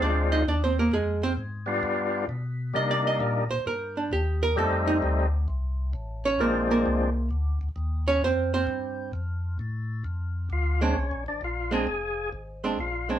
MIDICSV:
0, 0, Header, 1, 4, 480
1, 0, Start_track
1, 0, Tempo, 456621
1, 965, Time_signature, 4, 2, 24, 8
1, 13865, End_track
2, 0, Start_track
2, 0, Title_t, "Hollow-body jazz guitar"
2, 0, Program_c, 0, 26
2, 21, Note_on_c, 0, 74, 78
2, 27, Note_on_c, 0, 62, 62
2, 323, Note_off_c, 0, 74, 0
2, 325, Note_off_c, 0, 62, 0
2, 336, Note_on_c, 0, 75, 94
2, 343, Note_on_c, 0, 63, 74
2, 486, Note_off_c, 0, 75, 0
2, 490, Note_off_c, 0, 63, 0
2, 507, Note_on_c, 0, 62, 64
2, 511, Note_on_c, 0, 74, 70
2, 652, Note_off_c, 0, 62, 0
2, 652, Note_off_c, 0, 74, 0
2, 670, Note_on_c, 0, 72, 80
2, 680, Note_on_c, 0, 60, 62
2, 813, Note_off_c, 0, 72, 0
2, 818, Note_off_c, 0, 60, 0
2, 833, Note_on_c, 0, 70, 73
2, 838, Note_on_c, 0, 58, 64
2, 974, Note_off_c, 0, 70, 0
2, 977, Note_off_c, 0, 58, 0
2, 982, Note_on_c, 0, 68, 72
2, 989, Note_on_c, 0, 56, 59
2, 1283, Note_off_c, 0, 68, 0
2, 1287, Note_off_c, 0, 56, 0
2, 1295, Note_on_c, 0, 60, 70
2, 1298, Note_on_c, 0, 72, 82
2, 1389, Note_off_c, 0, 60, 0
2, 1389, Note_off_c, 0, 72, 0
2, 2899, Note_on_c, 0, 75, 81
2, 3048, Note_off_c, 0, 75, 0
2, 3056, Note_on_c, 0, 74, 89
2, 3206, Note_off_c, 0, 74, 0
2, 3227, Note_on_c, 0, 75, 75
2, 3380, Note_off_c, 0, 75, 0
2, 3380, Note_on_c, 0, 77, 94
2, 3682, Note_off_c, 0, 77, 0
2, 3685, Note_on_c, 0, 72, 83
2, 3841, Note_off_c, 0, 72, 0
2, 3858, Note_on_c, 0, 70, 73
2, 4161, Note_off_c, 0, 70, 0
2, 4175, Note_on_c, 0, 62, 62
2, 4326, Note_off_c, 0, 62, 0
2, 4338, Note_on_c, 0, 67, 77
2, 4641, Note_off_c, 0, 67, 0
2, 4655, Note_on_c, 0, 70, 111
2, 4806, Note_off_c, 0, 70, 0
2, 4820, Note_on_c, 0, 69, 76
2, 5122, Note_off_c, 0, 69, 0
2, 5125, Note_on_c, 0, 63, 84
2, 5222, Note_off_c, 0, 63, 0
2, 6573, Note_on_c, 0, 61, 83
2, 6575, Note_on_c, 0, 73, 89
2, 6725, Note_off_c, 0, 73, 0
2, 6726, Note_off_c, 0, 61, 0
2, 6732, Note_on_c, 0, 70, 71
2, 6738, Note_on_c, 0, 58, 59
2, 7038, Note_off_c, 0, 70, 0
2, 7041, Note_off_c, 0, 58, 0
2, 7054, Note_on_c, 0, 58, 65
2, 7057, Note_on_c, 0, 70, 71
2, 7648, Note_off_c, 0, 70, 0
2, 7649, Note_off_c, 0, 58, 0
2, 8489, Note_on_c, 0, 73, 105
2, 8495, Note_on_c, 0, 61, 82
2, 8643, Note_off_c, 0, 73, 0
2, 8646, Note_off_c, 0, 61, 0
2, 8664, Note_on_c, 0, 72, 85
2, 8670, Note_on_c, 0, 60, 65
2, 8964, Note_off_c, 0, 72, 0
2, 8967, Note_off_c, 0, 60, 0
2, 8976, Note_on_c, 0, 72, 90
2, 8981, Note_on_c, 0, 60, 68
2, 9568, Note_off_c, 0, 72, 0
2, 9570, Note_off_c, 0, 60, 0
2, 11366, Note_on_c, 0, 56, 68
2, 11374, Note_on_c, 0, 60, 65
2, 11374, Note_on_c, 0, 62, 81
2, 11509, Note_off_c, 0, 56, 0
2, 11512, Note_off_c, 0, 62, 0
2, 11513, Note_off_c, 0, 60, 0
2, 12311, Note_on_c, 0, 56, 66
2, 12323, Note_on_c, 0, 60, 70
2, 12327, Note_on_c, 0, 62, 67
2, 12461, Note_off_c, 0, 56, 0
2, 12467, Note_off_c, 0, 60, 0
2, 12468, Note_off_c, 0, 62, 0
2, 13285, Note_on_c, 0, 56, 60
2, 13290, Note_on_c, 0, 60, 70
2, 13298, Note_on_c, 0, 62, 70
2, 13427, Note_off_c, 0, 56, 0
2, 13430, Note_off_c, 0, 60, 0
2, 13433, Note_off_c, 0, 62, 0
2, 13761, Note_on_c, 0, 56, 54
2, 13768, Note_on_c, 0, 60, 62
2, 13772, Note_on_c, 0, 62, 58
2, 13865, Note_off_c, 0, 56, 0
2, 13865, Note_off_c, 0, 60, 0
2, 13865, Note_off_c, 0, 62, 0
2, 13865, End_track
3, 0, Start_track
3, 0, Title_t, "Tonewheel organ"
3, 0, Program_c, 1, 16
3, 0, Note_on_c, 1, 56, 68
3, 0, Note_on_c, 1, 60, 61
3, 0, Note_on_c, 1, 62, 56
3, 0, Note_on_c, 1, 65, 72
3, 451, Note_off_c, 1, 56, 0
3, 453, Note_off_c, 1, 60, 0
3, 457, Note_off_c, 1, 62, 0
3, 460, Note_off_c, 1, 65, 0
3, 1745, Note_on_c, 1, 55, 70
3, 1749, Note_on_c, 1, 59, 60
3, 1759, Note_on_c, 1, 62, 57
3, 1763, Note_on_c, 1, 65, 72
3, 2364, Note_off_c, 1, 55, 0
3, 2366, Note_off_c, 1, 59, 0
3, 2371, Note_off_c, 1, 62, 0
3, 2373, Note_off_c, 1, 65, 0
3, 2876, Note_on_c, 1, 55, 61
3, 2883, Note_on_c, 1, 58, 57
3, 2891, Note_on_c, 1, 62, 57
3, 2893, Note_on_c, 1, 63, 66
3, 3616, Note_off_c, 1, 55, 0
3, 3619, Note_off_c, 1, 58, 0
3, 3624, Note_off_c, 1, 62, 0
3, 3625, Note_off_c, 1, 63, 0
3, 4794, Note_on_c, 1, 55, 67
3, 4803, Note_on_c, 1, 57, 63
3, 4807, Note_on_c, 1, 60, 61
3, 4813, Note_on_c, 1, 63, 81
3, 5535, Note_off_c, 1, 55, 0
3, 5540, Note_off_c, 1, 57, 0
3, 5542, Note_off_c, 1, 60, 0
3, 5544, Note_off_c, 1, 63, 0
3, 6719, Note_on_c, 1, 53, 63
3, 6724, Note_on_c, 1, 56, 54
3, 6731, Note_on_c, 1, 60, 55
3, 6733, Note_on_c, 1, 62, 70
3, 7457, Note_off_c, 1, 53, 0
3, 7460, Note_off_c, 1, 56, 0
3, 7463, Note_off_c, 1, 60, 0
3, 7464, Note_off_c, 1, 62, 0
3, 11065, Note_on_c, 1, 65, 66
3, 11363, Note_off_c, 1, 65, 0
3, 11378, Note_on_c, 1, 61, 86
3, 11816, Note_off_c, 1, 61, 0
3, 11860, Note_on_c, 1, 62, 75
3, 12007, Note_off_c, 1, 62, 0
3, 12030, Note_on_c, 1, 65, 69
3, 12325, Note_off_c, 1, 65, 0
3, 12334, Note_on_c, 1, 68, 92
3, 12926, Note_off_c, 1, 68, 0
3, 13460, Note_on_c, 1, 65, 70
3, 13760, Note_off_c, 1, 65, 0
3, 13776, Note_on_c, 1, 61, 65
3, 13865, Note_off_c, 1, 61, 0
3, 13865, End_track
4, 0, Start_track
4, 0, Title_t, "Tonewheel organ"
4, 0, Program_c, 2, 16
4, 0, Note_on_c, 2, 38, 78
4, 467, Note_off_c, 2, 38, 0
4, 476, Note_on_c, 2, 39, 86
4, 946, Note_off_c, 2, 39, 0
4, 961, Note_on_c, 2, 41, 79
4, 1429, Note_off_c, 2, 41, 0
4, 1442, Note_on_c, 2, 44, 81
4, 1910, Note_off_c, 2, 44, 0
4, 1923, Note_on_c, 2, 43, 74
4, 2390, Note_off_c, 2, 43, 0
4, 2407, Note_on_c, 2, 47, 83
4, 2872, Note_off_c, 2, 47, 0
4, 2888, Note_on_c, 2, 48, 81
4, 3352, Note_off_c, 2, 48, 0
4, 3368, Note_on_c, 2, 46, 84
4, 3664, Note_off_c, 2, 46, 0
4, 3691, Note_on_c, 2, 46, 38
4, 3770, Note_off_c, 2, 46, 0
4, 3848, Note_on_c, 2, 43, 76
4, 4313, Note_off_c, 2, 43, 0
4, 4327, Note_on_c, 2, 39, 86
4, 4792, Note_off_c, 2, 39, 0
4, 4806, Note_on_c, 2, 41, 85
4, 5272, Note_off_c, 2, 41, 0
4, 5281, Note_on_c, 2, 38, 88
4, 5749, Note_off_c, 2, 38, 0
4, 5760, Note_on_c, 2, 36, 75
4, 6228, Note_off_c, 2, 36, 0
4, 6238, Note_on_c, 2, 33, 89
4, 6707, Note_off_c, 2, 33, 0
4, 6718, Note_on_c, 2, 34, 84
4, 7187, Note_off_c, 2, 34, 0
4, 7208, Note_on_c, 2, 36, 85
4, 7672, Note_off_c, 2, 36, 0
4, 7682, Note_on_c, 2, 38, 85
4, 7980, Note_off_c, 2, 38, 0
4, 8001, Note_on_c, 2, 38, 38
4, 8082, Note_off_c, 2, 38, 0
4, 8156, Note_on_c, 2, 39, 84
4, 8626, Note_off_c, 2, 39, 0
4, 8637, Note_on_c, 2, 41, 85
4, 9106, Note_off_c, 2, 41, 0
4, 9113, Note_on_c, 2, 43, 89
4, 9584, Note_off_c, 2, 43, 0
4, 9601, Note_on_c, 2, 41, 83
4, 10067, Note_off_c, 2, 41, 0
4, 10083, Note_on_c, 2, 45, 86
4, 10548, Note_off_c, 2, 45, 0
4, 10559, Note_on_c, 2, 41, 79
4, 11026, Note_off_c, 2, 41, 0
4, 11037, Note_on_c, 2, 38, 82
4, 11505, Note_off_c, 2, 38, 0
4, 11521, Note_on_c, 2, 36, 74
4, 11677, Note_off_c, 2, 36, 0
4, 11682, Note_on_c, 2, 34, 53
4, 11839, Note_on_c, 2, 32, 63
4, 11842, Note_off_c, 2, 34, 0
4, 11989, Note_off_c, 2, 32, 0
4, 11995, Note_on_c, 2, 34, 83
4, 12464, Note_off_c, 2, 34, 0
4, 12479, Note_on_c, 2, 29, 85
4, 12945, Note_off_c, 2, 29, 0
4, 12956, Note_on_c, 2, 32, 80
4, 13424, Note_off_c, 2, 32, 0
4, 13443, Note_on_c, 2, 34, 71
4, 13865, Note_off_c, 2, 34, 0
4, 13865, End_track
0, 0, End_of_file